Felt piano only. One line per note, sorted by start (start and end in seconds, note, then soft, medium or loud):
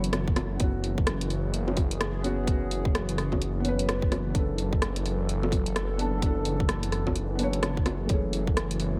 0.00 0.62 F#3 loud
0.00 0.62 E4 medium
0.00 0.62 A4 loud
0.00 0.59 C#5 loud
0.56 2.20 B3 medium
0.60 2.22 C#4 medium
0.60 2.24 F#4 medium
2.22 2.42 B3 medium
2.22 2.45 C#4 medium
2.26 2.46 F#4 loud
2.43 3.59 B3 medium
2.48 3.63 C#4 medium
2.48 3.64 F#4 loud
3.60 4.28 B3 medium
3.64 4.33 C#4 medium
3.64 4.34 B4 loud
4.30 5.94 B3 medium
4.34 5.96 D4 medium
4.38 5.98 A4 medium
5.97 6.16 B3 medium
5.97 6.20 D4 medium
5.97 6.21 A4 loud
6.18 7.34 B3 loud
6.22 7.37 D4 medium
6.22 7.39 A4 loud
7.35 8.06 B3 loud
7.39 8.08 D4 medium
7.39 8.10 C#5 loud
8.05 9.00 A3 medium
8.10 9.00 C#4 medium
8.10 9.00 G#4 medium